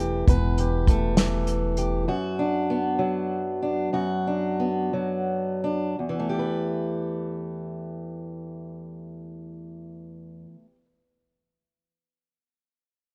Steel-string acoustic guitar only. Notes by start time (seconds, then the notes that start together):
Already playing: E2 E3 A3 B4
0.00 G4
0.28 E2 B4
0.59 G4
0.89 A3
1.18 E3
1.78 G4
2.08 F#2 F#4
2.39 D4
2.70 B3
2.99 F#3
3.62 D4
3.93 F#2 F#4
4.27 D4
4.60 B3
4.93 F#3
5.64 D4
5.99 E2
6.09 E3
6.19 A3
6.29 G4
6.39 B4